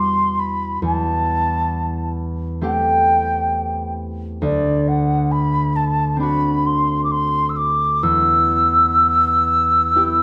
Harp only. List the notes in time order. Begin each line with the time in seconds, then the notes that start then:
Already playing: E2 G3 E4 F#4
0.82 E2
2.61 A3 C4 G4
4.42 D2
6.17 C4 D4
6.23 F#4
8.03 E2
9.95 B3 E4 G4